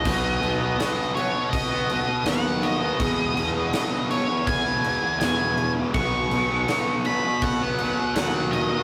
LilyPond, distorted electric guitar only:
\new Staff \with { instrumentName = "Distorted electric guitar" } { \clef bass \time 4/4 \key b \mixolydian \tempo 4 = 82 <b, fis b>8 <b, fis b>16 <fis b>16 <b, fis b>8 <b, fis b>8. <fis b>16 <b, fis b>8 <b, fis b>8. <fis b>16 | <e, b, e>8 <e, b, e>16 <b, e>16 <e, b, e>8 <e, b, e>8. <b, e>16 <e, b, e>8 <e, b, e>8. <b, e>16 | <b, fis b>8 <b, fis b>16 <fis b>16 <b, fis b>8 <b, fis b>8. <fis b>16 <b, fis b>8 <b, fis b>8. <fis b>16 | }